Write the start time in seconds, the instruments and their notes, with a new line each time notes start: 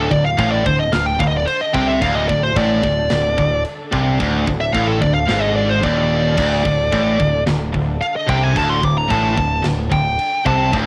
Already playing: overdriven electric guitar D2, string section D3 D4 A4, lead electric guitar A4
0.10 picked electric bass D1, distorted electric guitar D2, lead electric guitar D5, kick
0.25 lead electric guitar F5
0.38 picked electric bass A1, distorted electric guitar A2, lead electric guitar F5, kick, china
0.52 lead electric guitar D5
0.66 picked electric bass D1, distorted electric guitar D2, lead electric guitar C5, kick
0.79 lead electric guitar D#5
0.93 picked electric bass D1, distorted electric guitar D2, lead electric guitar F5, snare, china
1.06 lead electric guitar G5
1.19 picked electric bass D1, distorted electric guitar D2, lead electric guitar F5, kick
1.28 lead electric guitar D#5
1.37 lead electric guitar D5
1.46 lead electric guitar C5, china
1.61 lead electric guitar D#5
1.74 picked electric bass C2, distorted electric guitar C3, lead electric guitar G5, kick
1.88 lead electric guitar E5
2.02 picked electric bass D1, distorted electric guitar D2, lead electric guitar F5, kick, china
2.16 lead electric guitar D#5
2.28 picked electric bass D1, distorted electric guitar D2, lead electric guitar D5, kick
2.43 lead electric guitar C5
2.56 picked electric bass A1, distorted electric guitar A2, lead electric guitar D5, kick, china
2.83 picked electric bass D1, distorted electric guitar D2, kick
3.10 picked electric bass D1, distorted electric guitar D2, snare, china
3.37 picked electric bass D1, distorted electric guitar D2, kick
3.64 china
3.92 picked electric bass C2, distorted electric guitar C3, kick
4.20 picked electric bass D1, distorted electric guitar D2, kick, china
4.47 picked electric bass D1, distorted electric guitar D2, kick
4.60 lead electric guitar E5
4.73 picked electric bass A1, distorted electric guitar A2, lead electric guitar F5, kick, china
4.87 lead electric guitar A4
5.00 picked electric bass D1, distorted electric guitar D2, lead electric guitar D5, kick
5.14 lead electric guitar F5
5.27 picked electric bass G#1, distorted electric guitar G#2, lead electric guitar F5, snare, china
5.42 lead electric guitar D#5
5.56 lead electric guitar D5
5.69 lead electric guitar C5
5.82 picked electric bass D#1, distorted electric guitar D#2, lead electric guitar D5, kick, china
6.37 picked electric bass D1, distorted electric guitar D2, kick, china, crash
6.65 picked electric bass D1, distorted electric guitar D2, kick
6.92 picked electric bass A1, distorted electric guitar A2, kick, china
7.19 picked electric bass D1, distorted electric guitar D2, kick
7.47 picked electric bass D1, distorted electric guitar D2, snare, china
7.72 picked electric bass D1, distorted electric guitar D2, kick
8.01 lead electric guitar F5, china
8.16 lead electric guitar D#5
8.27 picked electric bass C2, distorted electric guitar C3, lead electric guitar G5, kick
8.43 lead electric guitar G#5
8.54 picked electric bass D1, distorted electric guitar D2, lead electric guitar A5, kick, china
8.70 lead electric guitar C6
8.82 picked electric bass D1, distorted electric guitar D2, lead electric guitar D6, kick
8.98 lead electric guitar A#5
9.08 picked electric bass A1, distorted electric guitar A2, lead electric guitar A5, kick, china
9.36 picked electric bass D1, distorted electric guitar D2, kick
9.62 picked electric bass D1, distorted electric guitar D2, snare, china
9.90 picked electric bass D1, distorted electric guitar D2, lead electric guitar G5, kick
10.19 china
10.46 picked electric bass C2, distorted electric guitar C3, lead electric guitar A5, kick
10.72 picked electric bass D1, distorted electric guitar D2, kick, china